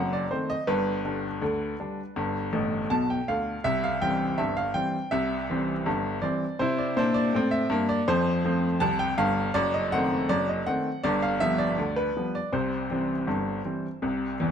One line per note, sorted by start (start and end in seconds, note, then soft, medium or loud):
0.00 0.24 F#1 medium
0.00 0.24 F#2 medium
0.00 0.11 F#5 medium
0.13 0.31 D5 medium
0.31 0.51 D#3 soft
0.31 0.51 A3 soft
0.31 0.52 C4 medium
0.31 0.49 C5 medium
0.50 0.68 D#5 medium
0.67 0.99 G1 medium
0.67 0.99 G2 medium
0.67 2.90 B4 medium
1.05 1.25 D3 medium
1.05 1.25 G3 medium
1.05 1.26 D4 medium
1.41 1.73 D2 medium
1.41 1.73 D3 medium
1.79 1.99 D3 soft
1.79 2.00 G3 soft
1.79 2.00 D4 medium
2.16 2.48 G1 medium
2.16 2.48 G2 medium
2.53 2.81 A1 medium
2.53 2.81 A2 medium
2.90 3.18 B1 medium
2.90 3.18 B2 medium
2.90 3.09 A5 medium
3.10 3.28 G5 medium
3.28 3.56 D2 medium
3.28 3.56 D3 medium
3.28 3.65 F5 medium
3.64 3.96 C2 medium
3.64 3.96 C3 medium
3.64 3.83 E5 loud
3.84 4.02 F5 medium
4.02 4.22 E3 medium
4.02 4.22 G3 medium
4.02 4.23 C4 medium
4.02 4.39 G5 loud
4.38 4.70 G1 medium
4.38 4.70 G2 medium
4.38 4.57 E5 medium
4.57 4.75 F5 medium
4.74 4.95 E3 soft
4.74 4.95 G3 medium
4.74 4.96 C4 medium
4.74 5.12 G5 medium
5.11 5.43 C2 medium
5.11 5.43 C3 medium
5.11 6.23 E5 medium
5.50 5.70 E3 medium
5.50 5.70 G3 medium
5.50 5.71 C4 medium
5.86 6.18 G1 medium
5.86 6.18 G2 medium
6.22 6.43 E3 medium
6.22 6.43 G3 soft
6.22 6.44 C4 medium
6.22 6.59 D5 medium
6.59 6.89 C3 medium
6.59 6.90 E4 medium
6.59 6.78 C5 medium
6.78 6.97 D5 medium
6.97 7.26 A#2 loud
6.97 7.27 D4 medium
6.97 7.15 C5 medium
7.14 7.52 D5 medium
7.34 7.64 A2 medium
7.34 7.65 C4 medium
7.51 7.89 E5 medium
7.70 8.00 G2 medium
7.70 8.01 A#3 medium
7.89 8.08 D5 loud
8.08 8.39 F2 loud
8.08 8.39 F3 medium
8.08 8.82 C5 loud
8.45 8.65 F3 medium
8.45 8.65 A3 medium
8.45 8.65 C4 medium
8.80 9.12 C2 medium
8.80 9.12 C3 medium
8.80 8.99 A5 loud
8.99 9.18 G5 loud
9.18 9.47 G1 medium
9.18 9.48 G2 medium
9.18 9.55 F5 loud
9.54 9.86 F#1 medium
9.54 9.86 F#2 loud
9.54 9.73 D5 loud
9.74 9.92 D#5 medium
9.92 10.12 D#3 medium
9.92 10.13 A3 medium
9.92 10.13 C4 medium
9.92 10.29 F#5 loud
10.29 10.61 F#1 medium
10.29 10.61 F#2 medium
10.29 10.48 D5 loud
10.49 10.67 D#5 medium
10.66 10.87 D#3 medium
10.66 10.87 A3 medium
10.66 10.87 C4 medium
10.66 11.03 F#5 medium
11.04 11.35 G1 medium
11.04 11.35 G2 medium
11.04 11.22 D5 loud
11.22 11.40 F5 medium
11.40 11.61 F3 medium
11.40 11.61 G3 medium
11.40 11.62 B3 medium
11.40 11.59 E5 loud
11.58 11.96 D5 medium
11.78 12.09 D2 medium
11.78 12.09 D3 medium
11.96 12.33 B4 medium
12.17 12.36 F3 soft
12.17 12.37 G3 soft
12.17 12.37 B3 soft
12.35 12.53 D5 medium
12.53 12.84 C2 medium
12.53 12.84 C3 medium
12.53 14.51 C5 medium
12.91 13.11 E3 soft
12.91 13.11 G3 medium
12.91 13.12 C4 medium
13.27 13.59 G1 medium
13.27 13.59 G2 medium
13.65 13.85 E3 soft
13.65 13.85 G3 soft
13.65 13.86 C4 soft
14.02 14.34 C2 medium
14.02 14.34 C3 medium
14.40 14.51 E2 medium
14.40 14.51 E3 medium